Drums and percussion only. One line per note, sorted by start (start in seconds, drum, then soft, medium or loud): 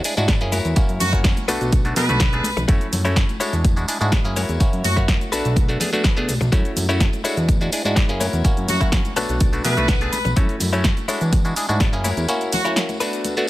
0.04 open hi-hat loud
0.04 tambourine medium
0.04 shaker medium
0.17 tambourine soft
0.17 high conga medium
0.17 shaker soft
0.28 kick loud
0.28 snare loud
0.28 closed hi-hat loud
0.28 tambourine medium
0.28 shaker soft
0.41 closed hi-hat soft
0.41 shaker soft
0.52 open hi-hat medium
0.52 tambourine medium
0.52 high conga medium
0.52 shaker medium
0.65 closed hi-hat soft
0.65 tambourine soft
0.65 shaker soft
0.76 kick loud
0.76 closed hi-hat medium
0.76 tambourine medium
0.76 shaker soft
0.89 closed hi-hat soft
0.89 shaker soft
1.00 open hi-hat loud
1.00 tambourine loud
1.00 high conga loud
1.00 low conga loud
1.00 shaker medium
1.13 kick medium
1.13 closed hi-hat soft
1.13 tambourine soft
1.13 shaker soft
1.24 kick loud
1.24 snare loud
1.24 closed hi-hat medium
1.24 tambourine medium
1.24 shaker soft
1.37 closed hi-hat soft
1.37 tambourine soft
1.37 high conga medium
1.37 shaker soft
1.48 open hi-hat loud
1.48 tambourine loud
1.48 shaker medium
1.61 closed hi-hat soft
1.61 tambourine soft
1.61 shaker soft
1.72 kick loud
1.72 closed hi-hat medium
1.72 tambourine medium
1.72 high conga medium
1.72 shaker soft
1.85 closed hi-hat soft
1.85 tambourine soft
1.85 shaker soft
1.96 open hi-hat loud
1.96 tambourine medium
1.96 low conga loud
1.96 shaker medium
2.09 closed hi-hat soft
2.09 tambourine soft
2.09 high conga medium
2.09 shaker soft
2.20 kick loud
2.20 snare loud
2.20 closed hi-hat medium
2.20 tambourine medium
2.20 shaker soft
2.33 closed hi-hat soft
2.33 shaker soft
2.44 open hi-hat loud
2.44 tambourine medium
2.44 high conga loud
2.44 shaker medium
2.57 closed hi-hat soft
2.57 tambourine soft
2.57 low conga loud
2.57 shaker soft
2.69 kick loud
2.69 closed hi-hat medium
2.69 tambourine medium
2.69 shaker soft
2.81 closed hi-hat soft
2.81 shaker soft
2.93 open hi-hat loud
2.93 tambourine medium
2.93 high conga loud
2.93 low conga loud
2.93 shaker medium
3.05 closed hi-hat soft
3.05 tambourine soft
3.05 shaker soft
3.16 kick loud
3.16 snare loud
3.16 closed hi-hat medium
3.16 tambourine soft
3.16 shaker soft
3.29 closed hi-hat soft
3.29 tambourine soft
3.29 high conga medium
3.29 shaker soft
3.41 open hi-hat loud
3.41 tambourine medium
3.41 shaker medium
3.53 closed hi-hat soft
3.53 tambourine soft
3.53 shaker soft
3.65 kick loud
3.65 closed hi-hat medium
3.65 tambourine medium
3.65 high conga loud
3.65 shaker soft
3.77 closed hi-hat soft
3.77 tambourine soft
3.77 shaker soft
3.88 open hi-hat loud
3.88 tambourine medium
3.88 shaker medium
4.01 closed hi-hat soft
4.01 tambourine soft
4.01 high conga medium
4.01 shaker soft
4.12 kick loud
4.12 snare loud
4.12 closed hi-hat medium
4.12 tambourine soft
4.12 shaker soft
4.25 closed hi-hat soft
4.25 shaker soft
4.36 open hi-hat loud
4.36 tambourine medium
4.36 high conga loud
4.36 shaker medium
4.49 closed hi-hat soft
4.49 tambourine soft
4.49 shaker soft
4.60 kick loud
4.60 closed hi-hat medium
4.60 tambourine medium
4.60 shaker soft
4.73 closed hi-hat soft
4.73 shaker soft
4.84 open hi-hat loud
4.84 tambourine medium
4.84 high conga loud
4.84 low conga medium
4.84 shaker medium
4.97 kick medium
4.97 tambourine soft
4.97 shaker soft
5.08 kick loud
5.08 snare loud
5.08 closed hi-hat medium
5.08 tambourine soft
5.08 shaker soft
5.21 closed hi-hat soft
5.21 tambourine soft
5.21 high conga medium
5.21 shaker soft
5.33 open hi-hat loud
5.33 tambourine medium
5.33 shaker medium
5.45 closed hi-hat soft
5.45 tambourine soft
5.45 shaker soft
5.56 kick loud
5.56 closed hi-hat medium
5.56 tambourine medium
5.56 high conga medium
5.56 shaker soft
5.69 closed hi-hat soft
5.69 tambourine soft
5.69 shaker soft
5.80 open hi-hat loud
5.80 tambourine medium
5.80 low conga loud
5.80 shaker medium
5.93 closed hi-hat soft
5.93 tambourine soft
5.93 high conga medium
5.93 shaker soft
6.04 kick loud
6.04 snare loud
6.04 closed hi-hat medium
6.04 tambourine soft
6.04 shaker soft
6.17 closed hi-hat soft
6.17 shaker soft
6.28 open hi-hat medium
6.28 tambourine medium
6.28 high conga loud
6.28 shaker medium
6.40 closed hi-hat soft
6.40 tambourine soft
6.40 low conga medium
6.40 shaker soft
6.52 kick loud
6.52 closed hi-hat medium
6.52 shaker soft
6.65 closed hi-hat soft
6.65 shaker soft
6.76 open hi-hat loud
6.76 tambourine medium
6.76 high conga loud
6.76 low conga medium
6.76 shaker medium
6.89 closed hi-hat soft
6.89 tambourine soft
6.89 shaker soft
7.00 kick loud
7.00 snare loud
7.00 closed hi-hat medium
7.00 shaker soft
7.13 closed hi-hat soft
7.13 tambourine soft
7.13 high conga medium
7.13 shaker soft
7.25 open hi-hat loud
7.25 tambourine medium
7.25 shaker medium
7.37 closed hi-hat soft
7.37 tambourine soft
7.37 shaker soft
7.49 kick loud
7.49 closed hi-hat medium
7.49 tambourine medium
7.49 high conga loud
7.49 shaker soft
7.61 closed hi-hat soft
7.61 tambourine soft
7.61 shaker soft
7.72 open hi-hat loud
7.72 tambourine medium
7.72 shaker medium
7.85 tambourine soft
7.85 high conga medium
7.85 shaker soft
7.96 kick loud
7.96 snare loud
7.96 closed hi-hat medium
7.96 tambourine soft
7.96 shaker soft
8.09 closed hi-hat soft
8.09 shaker soft
8.21 open hi-hat medium
8.21 tambourine medium
8.21 high conga medium
8.21 shaker medium
8.33 closed hi-hat soft
8.33 tambourine soft
8.33 shaker soft
8.45 kick loud
8.45 closed hi-hat medium
8.45 tambourine medium
8.45 shaker soft
8.57 closed hi-hat soft
8.57 shaker soft
8.68 open hi-hat loud
8.68 tambourine medium
8.68 high conga medium
8.68 low conga medium
8.68 shaker medium
8.81 kick medium
8.81 closed hi-hat soft
8.81 tambourine soft
8.81 shaker soft
8.92 kick loud
8.92 snare loud
8.92 closed hi-hat loud
8.92 tambourine soft
8.92 shaker soft
9.05 closed hi-hat soft
9.05 tambourine soft
9.05 high conga medium
9.05 shaker soft
9.16 open hi-hat medium
9.16 tambourine loud
9.16 shaker medium
9.28 closed hi-hat soft
9.28 tambourine soft
9.28 shaker soft
9.40 kick loud
9.40 closed hi-hat medium
9.40 tambourine soft
9.40 high conga medium
9.40 shaker soft
9.53 closed hi-hat soft
9.53 tambourine soft
9.53 shaker soft
9.65 open hi-hat loud
9.65 tambourine loud
9.65 low conga medium
9.65 shaker medium
9.77 closed hi-hat soft
9.77 tambourine soft
9.77 high conga medium
9.77 shaker soft
9.88 kick loud
9.88 snare loud
9.88 closed hi-hat medium
9.88 tambourine medium
9.88 shaker soft
10.01 closed hi-hat soft
10.01 shaker soft
10.13 open hi-hat medium
10.13 tambourine medium
10.13 high conga medium
10.13 shaker medium
10.25 closed hi-hat soft
10.25 tambourine soft
10.25 low conga medium
10.25 shaker soft
10.37 kick loud
10.37 closed hi-hat loud
10.37 shaker soft
10.49 closed hi-hat soft
10.49 shaker soft
10.60 open hi-hat loud
10.60 tambourine loud
10.60 high conga medium
10.60 low conga medium
10.60 shaker medium
10.73 tambourine soft
10.73 shaker soft
10.84 kick loud
10.84 snare loud
10.84 closed hi-hat loud
10.84 tambourine medium
10.84 shaker medium
10.97 closed hi-hat soft
10.97 tambourine soft
10.97 high conga medium
10.97 shaker soft
11.09 open hi-hat medium
11.09 tambourine loud
11.09 shaker medium
11.21 closed hi-hat soft
11.21 tambourine soft
11.21 shaker soft
11.32 kick loud
11.32 closed hi-hat loud
11.32 tambourine soft
11.32 high conga loud
11.32 shaker soft
11.45 closed hi-hat soft
11.45 tambourine soft
11.45 shaker soft
11.56 open hi-hat loud
11.56 tambourine medium
11.56 shaker medium
11.69 closed hi-hat soft
11.69 tambourine soft
11.69 high conga medium
11.69 shaker soft
11.80 kick loud
11.80 snare loud
11.80 closed hi-hat medium
11.80 tambourine medium
11.80 shaker soft
11.93 closed hi-hat soft
11.93 shaker soft
12.04 open hi-hat medium
12.04 tambourine medium
12.04 high conga medium
12.04 shaker medium
12.17 closed hi-hat soft
12.17 tambourine soft
12.17 shaker soft
12.29 closed hi-hat loud
12.29 tambourine medium
12.29 shaker soft
12.41 closed hi-hat soft
12.41 tambourine soft
12.41 shaker soft
12.53 open hi-hat loud
12.53 tambourine loud
12.53 high conga medium
12.53 low conga medium
12.53 shaker medium
12.65 closed hi-hat soft
12.65 tambourine soft
12.65 shaker soft
12.76 snare loud
12.76 closed hi-hat loud
12.76 tambourine medium
12.76 shaker soft
12.89 closed hi-hat soft
12.89 tambourine soft
12.89 high conga medium
12.89 shaker soft
13.01 open hi-hat medium
13.01 tambourine medium
13.01 shaker medium
13.13 closed hi-hat soft
13.13 tambourine soft
13.13 shaker soft
13.24 closed hi-hat loud
13.24 tambourine medium
13.24 high conga medium
13.24 shaker soft
13.36 closed hi-hat soft
13.36 tambourine soft
13.36 shaker soft